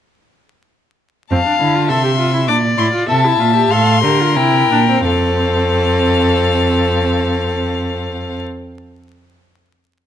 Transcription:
1.31 1.39 F2 medium
1.31 1.37 C4 medium
1.31 1.86 F5 medium
1.31 1.91 A5 medium
1.46 1.60 D4 soft
1.60 1.91 D3 medium
1.60 1.76 E4 medium
1.75 1.90 F4 medium
1.89 2.50 C3 medium
1.89 2.03 A4 medium
1.89 2.50 E5 medium
1.89 2.47 C6 medium
2.04 2.10 G4 soft
2.19 2.33 F4 medium
2.34 2.39 E4 medium
2.48 2.77 A#2 medium
2.48 2.56 D4 medium
2.48 3.08 D5 medium
2.48 2.56 D6 medium
2.77 2.86 A2 medium
2.77 2.93 E4 medium
2.77 2.86 C6 medium
2.93 3.08 F4 medium
3.09 3.39 C3 medium
3.09 3.26 A4 medium
3.09 3.72 E5 medium
3.09 3.73 A5 medium
3.24 3.41 E4 medium
3.39 3.70 A#2 medium
3.39 3.55 F4 medium
3.56 3.72 G4 medium
3.70 4.05 A2 medium
3.70 4.03 A4 medium
3.70 4.03 F5 medium
3.70 4.38 C6 medium
4.03 4.38 D3 medium
4.03 4.22 G4 medium
4.03 5.05 A#4 medium
4.20 4.37 F4 medium
4.36 4.70 C3 medium
4.36 4.71 E4 medium
4.36 5.06 G5 medium
4.70 5.05 A#2 medium
4.70 4.79 D4 medium
4.90 5.07 C4 medium
5.06 8.40 F2 medium
5.06 8.42 C4 medium
5.06 8.41 A4 medium
5.06 8.40 F5 medium

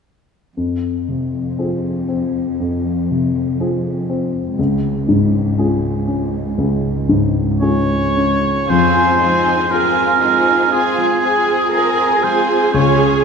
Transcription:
0.55 4.54 F2 soft
0.55 2.56 F2 soft
1.09 1.89 C3 soft
1.59 2.05 C4 soft
1.59 2.06 F4 soft
1.59 2.06 G#4 soft
2.08 2.89 C4 soft
2.60 4.54 F2 soft
3.11 3.89 C3 soft
3.60 4.05 C4 soft
3.60 4.05 F4 soft
3.60 4.05 G#4 soft
4.10 4.58 C4 soft
4.57 8.44 C#2 soft
4.57 6.53 C#2 soft
5.09 5.88 G#2 soft
5.58 6.03 C#4 soft
5.58 6.03 F4 soft
5.58 6.04 G#4 soft
6.07 6.87 C#4 soft
6.58 8.65 C#2 soft
7.09 7.94 G#2 soft
7.60 8.11 C#4 soft
7.60 8.12 F4 soft
7.60 8.12 G#4 soft
7.60 8.70 C#5 medium
8.17 8.70 C#4 soft
8.67 9.69 F2 soft
8.67 12.59 F3 soft
8.67 9.19 C4 soft
8.67 9.16 F4 soft
8.67 9.19 F4 soft
8.67 9.19 G#4 soft
8.67 9.72 C5 soft
8.67 9.19 G#5 soft
9.20 10.21 G#3 soft
9.20 9.70 C4 soft
9.20 9.70 D#4 soft
9.20 9.70 F4 soft
9.20 9.70 G#4 soft
9.20 9.70 G#5 soft
9.47 9.95 G#4 soft
9.70 10.19 C4 soft
9.70 12.70 C4 soft
9.70 10.21 F4 soft
9.70 10.20 F4 soft
9.70 12.71 F4 soft
9.70 10.21 G#4 soft
9.70 12.71 G#4 soft
9.70 10.71 A#4 soft
9.70 11.72 C5 soft
9.70 10.21 G#5 soft
9.97 11.47 G#4 soft
10.20 10.96 G#3 soft
10.20 10.69 C4 soft
10.20 10.71 D#4 soft
10.20 10.69 F4 soft
10.20 10.71 G#4 soft
10.20 10.71 G#5 soft
10.70 11.20 C4 soft
10.70 11.20 F4 soft
10.70 11.22 F4 soft
10.70 12.25 G#4 soft
10.70 11.22 G#4 soft
10.70 11.22 G#5 soft
10.97 12.22 G#3 soft
11.21 11.71 C4 soft
11.21 11.71 F4 soft
11.21 11.71 G#4 soft
11.21 11.72 G#4 soft
11.21 11.72 G#5 soft
11.72 12.22 C4 soft
11.72 12.21 F4 soft
11.72 12.23 G#4 soft
11.72 12.23 A#4 soft
11.72 12.78 C5 soft
11.72 12.23 G#5 soft
11.98 13.24 G#4 soft
12.23 13.23 G#3 soft
12.23 12.72 C4 soft
12.23 12.72 F4 soft
12.23 13.24 G#4 soft
12.23 12.73 G#4 soft
12.23 12.73 C5 soft
12.23 12.73 G#5 soft
12.73 13.24 C#2 soft
12.73 13.24 C#3 soft
12.73 13.23 C#4 soft
12.73 13.23 F4 soft
12.73 13.23 G#4 soft
12.73 13.23 C#5 soft
12.73 13.23 G#5 soft
12.98 13.24 C#4 soft

